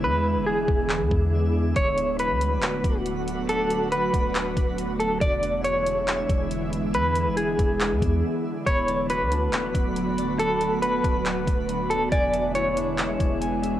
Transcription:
<<
  \new Staff \with { instrumentName = "Harp" } { \time 4/4 \key d \lydian \tempo 4 = 139 r1 | r1 | r1 | r1 |
r1 | b''8 d''8 fis'8 d'8 b4 b''8 d''8 | b''8 d''8 fis'8 d'8 b4 b''8 d''8 | gis''8 e''8 e'8 d'8 gis4 gis''8 e''8 | }
  \new Staff \with { instrumentName = "Clean electric guitar" } { \time 4/4 \key d \lydian b'4 gis'2. | cis''4 b'2 r4 | a'4 b'2~ b'8 a'8 | d''4 cis''2 r4 |
b'4 gis'2. | cis''4 b'2 r4 | a'4 b'2~ b'8 a'8 | d''4 cis''2 r4 | }
  \new Staff \with { instrumentName = "Synth texture" } { \time 4/4 \key d \lydian << { <gis' e''>1 | <b' fis''>1~ | <b' fis''>1 | <gis' e''>1~ |
<gis' e''>1 | <b' fis''>1~ | <b' fis''>1 | <gis' e''>1 | } \\ { d'1 | d'1~ | d'1~ | d'1~ |
d'1~ | d'1~ | d'1 | d'1 | } >> }
  \new Staff \with { instrumentName = "Ambient pad" } { \clef bass \time 4/4 \key d \lydian << { <e gis e'>1 | <fis a fis'>1~ | <fis a fis'>1 | <e gis e'>1~ |
<e gis e'>1 | <fis a fis'>1~ | <fis a fis'>1 | <e gis e'>1 | } \\ { <d b>1~ | <d b>1~ | <d b>1 | <d b>1~ |
<d b>1~ | <d b>1~ | <d b>1~ | <d b>1 | } >> }
  \new Staff \with { instrumentName = "808-style bass" } { \clef bass \time 4/4 \key d \lydian e,8. e,,8. e,,8. e,16 e,4. | d,,4~ d,,16 d,8~ d,32 d,,8~ d,,32 d,,4.~ | d,,4. d,,4 d,,4. | e,,2~ e,,8 e,,4. |
e,8. e,,8. e,,8. e,16 e,8 r4 | d,,4~ d,,16 d,8~ d,32 d,,8~ d,,32 d,,4.~ | d,,4. d,,4 d,,4. | e,,2~ e,,8 e,,4. | }
  \new DrumStaff \with { instrumentName = "Drums" } \drummode { \time 4/4 r4 r8 bd8 hc8 bd8 r4 | <hh bd>8 hh8 hh8 hh8 <hc hh>8 <hh bd>8 hh8 hh8 | hh8 hh8 hh8 <hh bd>8 <hc hh>8 <hh bd>8 hh8 hh8 | <hh bd>8 hh8 hh8 hh8 <hc hh>8 <hh bd>8 hh8 hh8 |
hh8 hh8 hh8 <hh bd>8 <hc hh>8 <hh bd>8 r4 | <hh bd>8 hh8 hh8 hh8 <hc hh>8 <hh bd>8 hh8 hh8 | hh8 hh8 hh8 <hh bd>8 <hc hh>8 <hh bd>8 hh8 hh8 | <hh bd>8 hh8 hh8 hh8 <hc hh>8 <hh bd>8 hh8 hh8 | }
>>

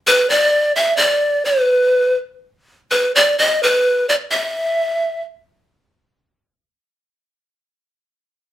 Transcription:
\new Staff \with { instrumentName = "Pan flute" } { \time 6/8 \key b \phrygian \tempo 4. = 84 b'8 d''4 e''8 d''4 | b'4. r4. | b'8 d''8 dis''8 b'4 d''8 | e''2 r4 |
r2. | r2. | }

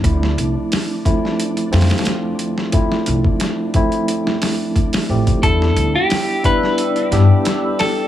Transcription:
<<
  \new Staff \with { instrumentName = "Ambient pad" } { \time 4/4 \key d \dorian \tempo 4 = 89 r1 | r1 | <d'' g'' e'''>1 | }
  \new Staff \with { instrumentName = "Clean electric guitar" } { \time 4/4 \key d \dorian r1 | r1 | a'8. g'8. b'2 a'8 | }
  \new Staff \with { instrumentName = "Synth texture" } { \time 4/4 \key d \dorian d'1~ | d'1 | d'1 | }
  \new Staff \with { instrumentName = "Tine electric piano" } { \time 4/4 \key d \dorian <f a c' e'>4. <f a c' e'>4 <f a c' f'>8 r4 | <f a c' e'>4. <f a c' e'>2 <f a c' g'>8 | <g b d' e'>4. <g b d' e'>4 <g b d' g'>8 r4 | }
  \new Staff \with { instrumentName = "Upright bass" } { \clef bass \time 4/4 \key d \dorian d,8 c,8 r4. f,8 r4 | r8 c,8 r2 r8 a,,8 | e,8 d,8 r4. g,8 r4 | }
  \new DrumStaff \with { instrumentName = "Drums" } \drummode { \time 4/4 <hh bd>16 sn16 hh8 <hho sn>8 <hh bd>16 sn16 hh16 hh16 <hho sn>32 <hho sn>32 <hho sn>32 <hho sn>32 <hh sn>8 hh16 sn16 | <hh bd>16 sn16 hh16 bd16 <hh sn>8 <hh bd>16 hh16 hh16 sn16 <hho sn>8 <hh bd>16 <hho sn>8 <hh bd>16 | <hh bd>16 sn16 hh8 <hho sn>8 <hh bd>16 sn16 hh16 hh16 <hh sn>8 <hh sn>8 <hho sn>8 | }
>>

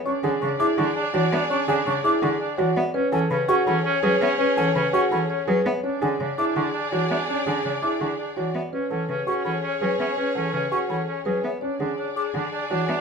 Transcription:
<<
  \new Staff \with { instrumentName = "Flute" } { \time 4/4 \key e \mixolydian \tempo 4 = 166 cis'''8 gis''8 cis'''8 d'''8 cis'''8 r4 e''8 | cis'''8 gis''8 cis'''8 d'''8 cis'''8 r4 e''8 | r8 gis''8 b''8 cis'''8 b''8 r4 e''8 | r8 gis''8 b''8 cis'''8 b''8 r4 e''8 |
r8 gis''8 r8 d'''8 cis'''8 r4 e''8 | r8 gis''8 r8 d'''8 cis'''8 r4 e''8 | r4. cis'''8 b''8 r4 e''8 | r4. cis'''8 b''8 r4 e''8 |
r4. d'''8 r4. e''8 | }
  \new Staff \with { instrumentName = "Marimba" } { \time 4/4 \key e \mixolydian cis''8 fis''8 cis''8 gis'8 fis''8 d''8 cis''8 d''8 | cis''8 fis''8 cis''8 gis'8 fis''8 d''8 cis''8 d''8 | b'8 fis''8 b'8 gis'8 fis''8 cis''8 b'8 cis''8 | b'8 fis''8 b'8 gis'8 fis''8 cis''8 b'8 cis''8 |
cis''8 fis''8 cis''8 gis'8 fis''8 d''8 cis''8 d''8 | cis''8 fis''8 cis''8 gis'8 fis''8 d''8 cis''8 d''8 | b'8 fis''8 b'8 gis'8 fis''8 cis''8 b'8 cis''8 | b'8 fis''8 b'8 gis'8 fis''8 cis''8 b'8 cis''8 |
cis''8 fis''8 cis''8 gis'8 fis''8 d''8 cis''8 d''8 | }
  \new Staff \with { instrumentName = "String section" } { \time 4/4 \key e \mixolydian <gis' d''>1~ | <gis' d''>2.~ <gis' d''>8 r8 | <gis' cis''>1~ | <gis' cis''>2.~ <gis' cis''>8 r8 |
<gis' d''>1~ | <gis' d''>2.~ <gis' d''>8 r8 | <gis' cis''>1~ | <gis' cis''>2.~ <gis' cis''>8 r8 |
<gis' d''>1 | }
  \new Staff \with { instrumentName = "Grand piano" } { \time 4/4 \key e \mixolydian cis'8 gis'8 r8 e'8 gis'8 r8 fis'8 r8 | cis'8 gis'8 r8 e'8 gis'8 r8 fis'8 r8 | cis'8 a'8 r8 fis'8 a'8 r8 gis'8 r8 | cis'8 a'8 r8 fis'8 a'8 r8 gis'8 r8 |
cis'8 gis'8 r8 e'8 gis'8 r8 fis'8 r8 | cis'8 gis'8 r8 e'8 gis'8 r8 fis'8 r8 | cis'8 a'8 r8 fis'8 a'8 r8 gis'8 r8 | cis'8 a'8 r8 fis'8 a'8 r8 gis'8 r8 |
cis'8 gis'8 r4 gis'8 r8 fis'8 r8 | }
  \new Staff \with { instrumentName = "Oboe" } { \time 4/4 \key e \mixolydian d'8 d'8 d'8 d'8 d'8 d'8 d'8 d'8 | d'8 d'8 d'8 d'8 d'8 d'8 d'8 r8 | cis'8 cis'8 cis'8 cis'8 cis'8 cis'8 cis'8 cis'8 | cis'8 cis'8 cis'8 cis'8 cis'8 cis'8 cis'8 r8 |
d'8 d'8 d'8 d'8 d'8 d'8 d'8 d'8 | d'8 d'8 d'8 d'8 d'8 d'8 d'8 r8 | cis'8 cis'8 cis'8 cis'8 cis'8 cis'8 cis'8 cis'8 | cis'8 cis'8 cis'8 cis'8 cis'8 cis'8 cis'8 r8 |
d'8 d'8 d'8 d'8 d'8 d'8 d'8 d'8 | }
  \new Staff \with { instrumentName = "Cello" } { \clef bass \time 4/4 \key e \mixolydian r8 d8 cis8 r8 d8 r8 e8 b8 | r8 d8 cis8 r8 d8 r8 e8 b8 | r8 e8 cis8 r8 e8 r8 fis8 b8 | r8 e8 cis8 r8 e8 r8 fis8 b8 |
r8 d8 cis8 r8 d8 r8 e8 b8 | r8 d8 cis8 r8 d8 r8 e8 b8 | r8 e8 cis8 r8 e8 r8 fis8 b8 | r8 e8 cis8 r8 e8 r8 fis8 b8 |
r8 d8 r4 d8 r8 e8 b8 | }
>>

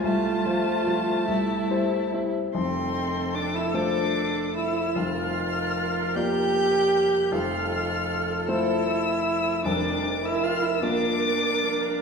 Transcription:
<<
  \new Staff \with { instrumentName = "Violin" } { \time 6/8 \key f \major \tempo 4. = 50 a''2~ a''8 r8 | c'''4 d'''16 e'''16 d'''4 e'''8 | f'''4. g'''4. | f'''4. e'''4. |
d'''8. e'''16 f'''16 e'''16 d'''4. | }
  \new Staff \with { instrumentName = "Viola" } { \time 6/8 \key f \major f'4. e'4~ e'16 r16 | a'2. | bes'2. | a'2. |
bes'2. | }
  \new Staff \with { instrumentName = "Cello" } { \time 6/8 \key f \major a2~ a8 r8 | c'4 d'16 e'16 d'4 e'8 | f'4. g'4. | f'4. e'4. |
d'8. e'16 f'16 e'16 d'4. | }
  \new Staff \with { instrumentName = "Grand piano" } { \time 6/8 \key f \major c,8 <f f' c''>8 <f f' c''>8 c,8 <g e' c''>8 <g e' c''>8 | <f,, f,>4. <a f' c''>4. | <f,, f,>4. <bes f' d''>4. | <f,, f,>4. <a f' c''>4. |
<f,, f,>4. <bes f' bes'>4. | }
>>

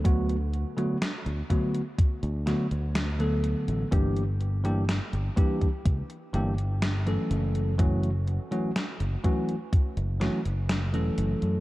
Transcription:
<<
  \new Staff \with { instrumentName = "Tine electric piano" } { \time 4/4 \key fis \phrygian \tempo 4 = 62 <d fis a b fis'>16 r8 <d fis a b fis'>16 r8 <d fis a b fis'>16 r8. <d fis a b fis'>16 r8 <d fis a b a'>8. | <e g bes d' g'>16 r8 <e g bes d' g'>16 r8 <e g bes d' g'>16 r8. <e g bes d' g'>16 r8 <e fis a cis' a'>8. | <e fis a cis' fis'>16 r8 <e fis a cis' fis'>16 r8 <e fis a cis' fis'>16 r8. <e fis a cis' fis'>16 r8 <e fis a cis' a'>8. | }
  \new Staff \with { instrumentName = "Fingered electric bass" } { \clef bass \time 4/4 \key fis \phrygian d,8 r8. d,16 r8. d,16 r16 d,8. r16 a,,16 | g,,4 r16 g,,16 r8 cis,16 r16 g,,8. r16 fis,,8~ | fis,,8 r8. fis,,16 r8. fis,,16 r16 fis,,8 e,,16 fis,,16 fis,16 | }
  \new DrumStaff \with { instrumentName = "Drums" } \drummode { \time 4/4 <hh bd>16 hh16 hh16 hh16 <hh sn>16 hh16 <hh bd>16 hh16 <hh bd>16 hh16 <hh sn>16 hh16 <hh sn>16 hh16 hh16 hh16 | <hh bd>16 hh16 hh16 hh16 <hh sn>16 hh16 <hh bd>16 <hh bd>16 <hh bd>16 hh16 hh16 hh16 <hh sn>16 hh16 hh16 hh16 | <hh bd>16 hh16 hh16 hh16 <hh sn>16 hh16 <hh bd>16 hh16 <hh bd>16 hh16 <hh sn>16 hh16 <hh sn>16 hh16 hh16 hh16 | }
>>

